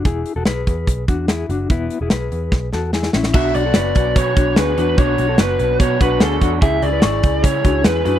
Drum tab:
CC |----------------|----------------|x---------------|----------------|
HH |x-x-x-x-x-x-x-x-|x-x-x-x---------|--x-x-x-x-x-x-x-|x-x-x-x-x-x-x-x-|
SD |----o-------o---|----o---o-o-oooo|----o-------o---|----o-------o---|
BD |o-----o-o-o-----|o-------o-------|o-----o-o-o-----|o-------o-o---o-|

CC |----------------|
HH |x-x-x-x-x-x-x-x-|
SD |----o-------o---|
BD |o-----o-o-o-----|